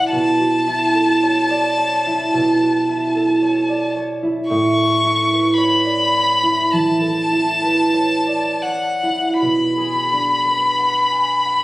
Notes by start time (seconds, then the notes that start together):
Already playing: B2 D4 E4 F#4 A4 D5 F#5
0.11 B2 A5
0.40 F#4
0.67 E4
0.95 A4
1.23 C#5
1.50 D5
1.78 C#5
2.06 E4
2.34 B2
2.62 F#4
2.89 E4
3.15 A4
3.42 C#5
3.69 D5
3.96 C#5
4.23 E4
4.49 A2 C#6
4.77 A4
5.04 E4
5.31 B4
5.58 C#5 B5
5.85 D5
6.14 C#5
6.43 E4
6.72 E3 A5
7.01 A4
7.31 E4
7.62 B4
7.94 C#5
8.27 D5
8.62 C#5 F#5
9.03 E4
9.40 B2 B5
9.78 G#4
10.13 D4
10.45 B4
10.79 F#5
11.12 G#5
11.45 F#5